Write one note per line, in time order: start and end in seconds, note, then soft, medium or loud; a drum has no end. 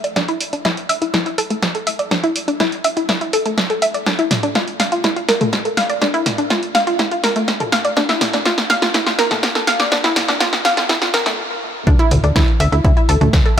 0.04 0.10 D5 medium
0.04 closed hi-hat soft
0.16 0.20 D4 loud
0.16 kick loud
0.16 snare medium
0.16 closed hi-hat medium
0.28 0.38 E4 loud
0.28 closed hi-hat soft
0.41 open hi-hat loud
0.53 0.59 D4 medium
0.53 closed hi-hat soft
0.65 0.75 E4 loud
0.65 kick loud
0.65 snare medium
0.65 closed hi-hat medium
0.77 closed hi-hat soft
0.89 0.96 E5 loud
0.89 open hi-hat loud
1.02 1.08 E4 medium
1.02 closed hi-hat soft
1.14 1.18 E4 loud
1.14 kick loud
1.14 snare medium
1.14 closed hi-hat medium
1.26 1.35 E4 medium
1.26 closed hi-hat soft
1.38 1.42 A4 loud
1.38 open hi-hat loud
1.50 1.54 A3 medium
1.50 closed hi-hat soft
1.63 kick loud
1.63 snare medium
1.63 closed hi-hat medium
1.75 1.79 A4 medium
1.75 closed hi-hat soft
1.87 1.93 E5 loud
1.87 open hi-hat loud
1.99 2.06 D5 medium
1.99 closed hi-hat soft
2.11 2.15 D4 loud
2.11 kick loud
2.11 snare medium
2.11 closed hi-hat medium
2.23 2.33 E4 loud
2.23 closed hi-hat soft
2.36 open hi-hat loud
2.48 2.54 D4 medium
2.48 closed hi-hat soft
2.60 2.70 E4 loud
2.60 kick loud
2.60 snare medium
2.60 closed hi-hat medium
2.72 closed hi-hat soft
2.84 2.91 E5 loud
2.84 open hi-hat loud
2.97 3.03 E4 medium
2.97 closed hi-hat soft
3.09 3.13 E4 loud
3.09 kick loud
3.09 snare medium
3.09 closed hi-hat medium
3.21 3.31 E4 medium
3.21 closed hi-hat soft
3.33 3.37 A4 loud
3.33 open hi-hat loud
3.46 3.49 A3 medium
3.46 closed hi-hat soft
3.58 kick loud
3.58 snare medium
3.58 closed hi-hat medium
3.70 3.74 A4 medium
3.70 closed hi-hat soft
3.82 3.89 E5 loud
3.82 open hi-hat loud
3.94 4.01 D5 medium
3.94 closed hi-hat soft
4.06 4.10 D4 loud
4.06 kick loud
4.06 snare medium
4.06 closed hi-hat medium
4.19 4.28 E4 loud
4.19 closed hi-hat soft
4.31 snare medium
4.31 open hi-hat loud
4.31 mid tom medium
4.43 4.49 D4 medium
4.43 closed hi-hat soft
4.55 4.65 F4 loud
4.55 kick loud
4.55 snare medium
4.55 closed hi-hat medium
4.68 closed hi-hat soft
4.80 4.86 F5 loud
4.80 snare medium
4.80 open hi-hat loud
4.92 4.98 F4 medium
4.92 closed hi-hat soft
5.04 5.08 E4 loud
5.04 kick loud
5.04 snare medium
5.04 closed hi-hat medium
5.16 5.26 F4 medium
5.16 closed hi-hat soft
5.29 5.32 A#4 loud
5.29 snare medium
5.29 open hi-hat loud
5.41 5.45 A3 medium
5.41 closed hi-hat soft
5.41 mid tom medium
5.53 kick loud
5.53 snare medium
5.53 closed hi-hat medium
5.65 5.69 A4 medium
5.65 closed hi-hat soft
5.77 5.84 F5 loud
5.77 snare medium
5.77 open hi-hat loud
5.90 5.96 D5 medium
5.90 closed hi-hat soft
6.01 6.05 D4 loud
6.01 kick loud
6.01 snare medium
6.01 closed hi-hat medium
6.14 6.23 E4 loud
6.14 closed hi-hat soft
6.26 snare medium
6.26 open hi-hat loud
6.26 mid tom medium
6.38 6.45 D4 medium
6.38 closed hi-hat soft
6.50 6.60 F4 loud
6.50 kick loud
6.50 snare medium
6.50 closed hi-hat medium
6.63 closed hi-hat soft
6.75 6.81 F5 loud
6.75 snare medium
6.75 open hi-hat loud
6.87 6.93 F4 medium
6.87 closed hi-hat soft
6.99 7.03 E4 loud
6.99 kick loud
6.99 snare medium
6.99 closed hi-hat medium
7.11 7.21 F4 medium
7.11 closed hi-hat soft
7.24 7.27 A#4 loud
7.24 snare medium
7.24 open hi-hat loud
7.36 7.40 A3 medium
7.36 closed hi-hat soft
7.48 kick loud
7.48 snare medium
7.48 closed hi-hat medium
7.60 7.64 A4 medium
7.60 closed hi-hat soft
7.60 mid tom loud
7.72 7.79 F5 loud
7.72 snare medium
7.72 open hi-hat loud
7.85 7.91 D5 medium
7.85 closed hi-hat soft
7.97 8.01 D4 loud
7.97 kick loud
7.97 snare medium
7.97 closed hi-hat medium
8.09 8.18 E4 loud
8.09 snare medium
8.09 closed hi-hat soft
8.21 snare medium
8.21 open hi-hat loud
8.21 mid tom medium
8.33 8.40 D4 medium
8.33 snare medium
8.33 closed hi-hat soft
8.45 8.55 F4 loud
8.45 kick loud
8.45 snare medium
8.45 closed hi-hat medium
8.58 snare medium
8.58 closed hi-hat soft
8.70 8.76 F5 loud
8.70 snare medium
8.70 open hi-hat loud
8.82 8.88 F4 medium
8.82 snare medium
8.82 closed hi-hat soft
8.94 8.98 E4 loud
8.94 kick loud
8.94 snare loud
8.94 closed hi-hat medium
9.06 9.16 F4 medium
9.06 snare medium
9.06 closed hi-hat soft
9.19 9.22 A#4 loud
9.19 snare medium
9.19 open hi-hat loud
9.31 9.35 A3 medium
9.31 snare medium
9.31 closed hi-hat soft
9.31 mid tom medium
9.43 kick loud
9.43 snare loud
9.43 closed hi-hat medium
9.55 9.59 A4 medium
9.55 snare medium
9.55 closed hi-hat soft
9.67 9.74 F5 loud
9.67 snare loud
9.67 open hi-hat loud
9.80 9.86 D5 medium
9.80 snare medium
9.80 closed hi-hat soft
9.92 9.96 D4 loud
9.92 kick loud
9.92 snare loud
9.92 closed hi-hat medium
10.04 10.14 E4 loud
10.04 snare medium
10.04 closed hi-hat soft
10.16 snare loud
10.16 open hi-hat loud
10.16 mid tom medium
10.28 10.35 D4 medium
10.28 snare medium
10.28 closed hi-hat soft
10.40 10.50 F4 loud
10.40 kick loud
10.40 snare loud
10.40 closed hi-hat medium
10.53 snare medium
10.53 closed hi-hat soft
10.65 10.71 F5 loud
10.65 snare loud
10.65 open hi-hat loud
10.77 10.84 F4 medium
10.77 snare loud
10.77 closed hi-hat soft
10.89 10.93 E4 loud
10.89 kick loud
10.89 snare loud
10.89 closed hi-hat medium
11.02 11.11 F4 medium
11.02 snare medium
11.02 closed hi-hat soft
11.14 11.18 A#4 loud
11.14 snare loud
11.14 open hi-hat loud
11.14 mid tom medium
11.26 11.30 A3 medium
11.26 snare medium
11.26 closed hi-hat soft
11.87 11.95 D2 loud
11.87 11.91 D4 loud
11.87 kick loud
11.87 closed hi-hat soft
11.99 12.09 E4 loud
11.99 closed hi-hat soft
12.11 12.20 D2 loud
12.11 open hi-hat loud
12.11 mid tom medium
12.24 12.32 D2 medium
12.24 12.30 D4 medium
12.24 closed hi-hat soft
12.36 12.44 D2 loud
12.36 12.45 E4 loud
12.36 kick loud
12.36 snare loud
12.36 closed hi-hat soft
12.48 closed hi-hat soft
12.60 12.68 D2 loud
12.60 12.67 E5 loud
12.60 open hi-hat loud
12.72 12.81 D2 medium
12.72 12.79 E4 medium
12.72 closed hi-hat soft
12.84 12.93 D2 loud
12.84 12.88 E4 loud
12.84 kick loud
12.84 closed hi-hat soft
12.97 13.06 E4 medium
12.97 closed hi-hat soft
13.09 13.17 D2 medium
13.09 13.13 A4 loud
13.09 open hi-hat loud
13.21 13.29 D2 medium
13.21 13.25 A3 medium
13.21 closed hi-hat soft
13.21 mid tom medium
13.33 13.42 D2 loud
13.33 kick loud
13.33 snare loud
13.33 closed hi-hat soft
13.46 13.49 A4 medium
13.46 closed hi-hat soft